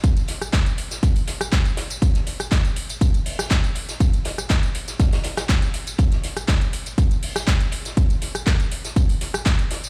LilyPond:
\new DrumStaff \with { instrumentName = "Drums" } \drummode { \time 4/4 \tempo 4 = 121 <hh bd tamb>16 <hh tamb>16 <hh hho sn>16 <hh ss tamb>16 <hc hh bd sn tamb>16 <hh tamb>16 <hh hho>16 <hh sn tamb>16 <hh bd tamb>16 <hho tamb>16 <hh hho sn>16 <hh ss tamb>16 <hc hh bd sn tamb>16 <hh tamb>16 <hh hho sn>16 <hh tamb>16 | <hh bd tamb>16 <hh sn tamb>16 <hh hho sn>16 <hh ss tamb>16 <hc hh bd sn tamb>16 <hh tamb>16 <hh hho>16 <hh tamb>16 <hh bd tamb>16 <hh tamb>16 hho16 <hh ss sn tamb>16 <hc hh bd sn tamb>16 <hh tamb>16 <hh hho>16 <hh sn tamb>16 | <hh bd tamb>16 <hh tamb>16 <hh hho sn>16 <hh ss tamb>16 <hc hh bd sn tamb>16 <hh tamb>16 <hh hho>16 <hh sn tamb>16 <hh bd sn tamb>16 <hh hho sn tamb>16 <hh hho sn>16 <hh ss sn tamb>16 <hc hh bd sn tamb>16 <hh sn tamb>16 <hh hho>16 <hh tamb>16 | <hh bd tamb>16 <hh sn tamb>16 <hh hho sn>16 <hh ss tamb>16 <hc hh bd sn tamb>16 <hh tamb>16 <hh hho>16 <hh tamb>16 <hh bd tamb>16 <hh tamb>16 hho16 <hh ss sn tamb>16 <hc hh bd sn tamb>16 <hh tamb>16 <hh hho>16 <hh sn tamb>16 |
<hh bd tamb>16 <hh tamb>16 <hh hho sn>16 <hh ss tamb>16 <hc hh bd sn tamb>16 <hh tamb>16 <hh hho>16 <hh sn tamb>16 <hh bd tamb>16 <hho tamb>16 <hh hho sn>16 <hh ss tamb>16 <hc hh bd sn tamb>16 <hh tamb>16 <hh hho sn>16 <hh tamb>16 | }